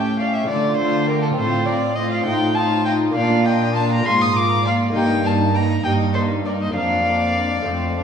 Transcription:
Already playing: lute A2 C#4 E4 G4, cello section A2, viola section C#4, violin section G4, violin G5
0.19 viola section C#4, violin section G4 D5, violin F5
0.34 violin section C#5, violin E5
0.44 lute A3 D4 F4, violin D5
0.49 lute D3, cello section D3, viola section A3, violin section F4 A4
0.77 viola section A3, violin section F4 A4, violin C5
1.07 viola section A3, violin section F4 G4, violin A#4
1.22 violin section F4, violin A4
1.33 lute C4 F4, violin C5
1.37 cello section A2, lute A2, viola section C4, violin section F4 A4
1.66 viola section C4, violin section F4 A#4, violin D5
1.96 viola section C4, violin section F4 C5, violin D#5
2.10 violin section D5, violin F5
2.22 lute C4 D#4 F4, violin G5
2.26 cello section A2, lute A2, viola section D#4, violin section F4 D#5
2.55 viola section D#4, violin section F4 F5, violin A5
2.85 viola section D#4, violin section F4 D#5, violin G5
3.11 lute A#3 D4 A#4, violin F5
3.15 lute A#2, cello section A#2, viola section D4, violin section F4 D5
3.44 viola section D4, violin section F4 D#5, violin G5
3.74 viola section D4, violin section F4 F5, violin A5
3.91 violin section G5, violin A#5
4.01 lute A#3 F4 A#4, violin section F4
4.05 lute G#2, cello section G#2, viola section A#3, violin section G#5, violin C6
4.19 violin section C6, violin D#6
4.33 viola section A#3, violin section F4 A#5, violin D6
4.64 viola section A#3, violin section F4 D5, violin F5
4.90 lute A#3 D#4 A#4, violin section D#4
4.94 lute G2, cello section G2, viola section A#3, violin section D#5, violin G5
5.23 viola section A#3, violin section D#4 F5, violin A5
5.53 viola section A#3, violin section D#4 G5, violin A#5
5.83 lute G2, cello section G2, viola section A#3, violin section D#4 D#5, violin G5
6.13 viola section A#3, violin section D#4 A4, violin C5
6.44 viola section A#3, violin section D#4 A#4, violin D5
6.61 violin section C5, violin D#5
6.71 lute A#3 D4 A#4
6.75 lute F2, cello section F2, viola section A#3, violin section D4 D5, violin F5
7.05 viola section A#3, violin section D4
7.36 viola section A#3, violin section D4
7.62 lute A3 C4 C5
7.66 lute F2, cello section F2, viola section A3, violin section C4
7.97 viola section A3, violin section D4

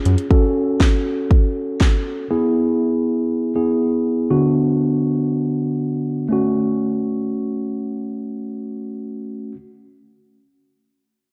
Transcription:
Already playing: tine electric piano C#4 F4 G#4
0.05 analog synth bass F#2, closed hi-hat
0.18 closed hi-hat
0.31 tine electric piano C#4 F#4 A4, kick
0.80 kick, snare
1.31 kick
1.81 kick, snare
2.31 tine electric piano B3 E4 G#4
3.56 tine electric piano B3 E4 G#4
4.31 tine electric piano D3 B3 D4 F#4
6.29 tine electric piano A3 C#4 F#4

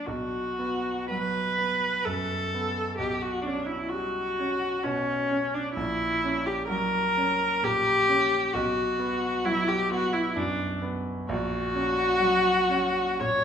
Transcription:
0.06 grand piano B1, viola F#4
0.59 grand piano B3
1.10 grand piano F#3, viola B4
1.58 grand piano B3
2.06 grand piano F#2, viola A4
2.54 grand piano B3
2.98 grand piano B1, viola G4
3.22 viola F#4
3.42 viola D4
3.46 grand piano C#4
3.66 viola E4
3.89 viola F#4
3.93 grand piano G3
4.40 grand piano C#4
4.84 grand piano B2, viola C#4
5.31 grand piano C#4
5.54 viola D4
5.74 grand piano A#1, viola E4
6.24 grand piano C#4
6.46 viola G4
6.68 grand piano F#3, viola A#4
7.17 grand piano C#4
7.63 grand piano A#2, viola G4
8.09 grand piano C#4
8.53 grand piano B1, viola F#4
8.99 grand piano B3
9.45 grand piano F#3, viola E4
9.68 viola G4
9.91 grand piano B3, viola F#4
10.13 viola E4
10.36 grand piano F#2, viola D4
10.82 grand piano B3
11.29 grand piano A#1, viola F#4
11.75 grand piano C#4
12.20 grand piano F#3
12.69 grand piano C#4
13.20 grand piano A#2, viola C#5

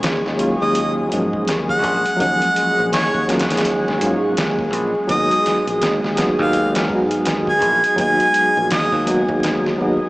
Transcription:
Already playing: reed electric piano F#3 A#3 C#4 F4, ambient pad G#3 G#4
0.03 fingered electric bass D#2, snare, closed hi-hat
0.26 fingered electric bass D#2, snare
0.37 reed electric piano F#3 A#3 C#4 F4, closed hi-hat
0.61 fingered electric bass D#2, harmonica D#5
0.75 closed hi-hat
1.09 reed electric piano F#3 A#3, closed hi-hat
1.13 fingered electric bass G#2, reed electric piano F3 C#4
1.33 kick
1.48 fingered electric bass D#2, snare, closed hi-hat
1.69 harmonica F#5, kick
1.84 fingered electric bass A#1, kick, closed hi-hat
2.06 closed hi-hat
2.17 fingered electric bass D#2, reed electric piano F#3 A#3, kick, closed hi-hat
2.21 reed electric piano F3 C#4, harmonica F#5
2.42 closed hi-hat
2.56 closed hi-hat
2.78 fingered electric bass A#1
2.92 fingered electric bass D#2, harmonica C#5, snare, closed hi-hat
3.14 fingered electric bass D#2, kick
3.28 reed electric piano F#3 A#3 C#4 F4, snare, closed hi-hat
3.39 snare, closed hi-hat
3.50 fingered electric bass D#2, snare, closed hi-hat
3.57 snare, closed hi-hat
3.65 closed hi-hat
3.88 snare
3.99 fingered electric bass G#2, reed electric piano F#3 A#3, closed hi-hat
4.04 reed electric piano C#4 F4
4.37 fingered electric bass D#2, snare, closed hi-hat
4.59 kick
4.73 fingered electric bass A#1, closed hi-hat
5.07 fingered electric bass D#2, reed electric piano F#3 B3, harmonica D#5, kick, closed hi-hat
5.12 reed electric piano D#4 F#4
5.31 closed hi-hat
5.46 snare, closed hi-hat
5.67 fingered electric bass A#1, closed hi-hat
5.81 fingered electric bass D#2, snare, closed hi-hat
6.04 fingered electric bass D#2, snare
6.17 reed electric piano F#3 B3 D#4 F#4, snare, closed hi-hat
6.39 fingered electric bass D#2, harmonica F5, kick
6.53 closed hi-hat
6.75 snare, closed hi-hat
6.87 fingered electric bass G#2, reed electric piano F#3 B3, kick
6.92 reed electric piano D#4 F#4
7.11 closed hi-hat
7.25 fingered electric bass D#2, snare, closed hi-hat
7.47 harmonica G#5, kick
7.62 fingered electric bass A#1, kick, closed hi-hat
7.84 closed hi-hat
7.96 fingered electric bass D#2, reed electric piano F#3 B3, kick, closed hi-hat
8.00 reed electric piano D#4 F#4, harmonica G#5
8.20 closed hi-hat
8.34 closed hi-hat
8.57 fingered electric bass A#1
8.70 fingered electric bass D#2, harmonica D#5, snare, closed hi-hat
8.92 fingered electric bass D#2, kick
9.06 reed electric piano F#3 B3 D#4 F#4, closed hi-hat
9.29 fingered electric bass D#2, kick
9.43 snare, closed hi-hat
9.66 snare
9.78 fingered electric bass D#2, reed electric piano F#3 B3 D#4 F#4

